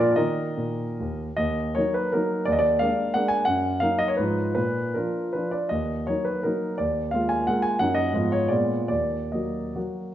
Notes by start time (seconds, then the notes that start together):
Already playing: A#2 F3 A#3 D4 A#4 D5
0.16 D#3 A#3 D#4 A#4 D#5
0.57 A#2
1.00 D#2
1.37 D#2 D#5
1.75 F#3 A#3 D#4 C#5
1.94 B4
2.12 F#3 A#3 D#4 A#4
2.45 D#2 D5
2.52 D#5
2.59 D5
2.79 G#3 A#3 D4 F5
3.14 G#3 A#3 D4 F#5
3.28 G#5
3.45 F#2 F#5
3.80 F#3 A#3 D#4 F5
3.98 D#5
4.08 C#5
4.17 G#2 F3 D#4 F4 B4
4.55 A#2 B4
4.94 F3 D4 F4 A#4
5.33 F3 D4 F4 B4
5.51 D5
5.69 D#2 D#5
6.07 F#3 A#3 D#4 C#5
6.25 B4
6.43 F#3 A#3 D#4 A#4
6.78 D#2 D5
7.11 G#3 A#3 F4 F5
7.29 G#5
7.47 G#3 A#3 F4 F#5
7.62 G#5
7.79 F#2 F#3 A#3 D#4 F#5
7.95 D#5
8.13 G#2 F3 B3 F4
8.32 C#5
8.48 A#2 G#3 B3 F4 D5
8.88 D#2 D5
9.32 F#3 A#3 F#4 D#5
9.75 F#3 A#3 F#4